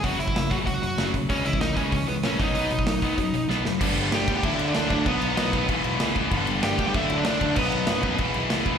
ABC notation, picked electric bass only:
X:1
M:4/4
L:1/8
Q:1/4=191
K:Bmix
V:1 name="Picked electric bass" clef=bass
F,,, F,,, F,,, F,,, C,, F,,, F,,, B,,, | C,, C,, C,, C,, C,, C,, ^A,,, B,,, | B,,, B,,, B,,, B,,, F,, B,,, B,,, F,,, | =G,,, G,,, G,,, =D,, D,, D,, D,, D,, |
B,,, B,,, B,,,2 E,,, B,,, C,,2 | =G,,, G,,, G,,, =D,, D,, D,, D,, D,, | B,,, B,,, F,,2 E,,, B,,, C,,2 |]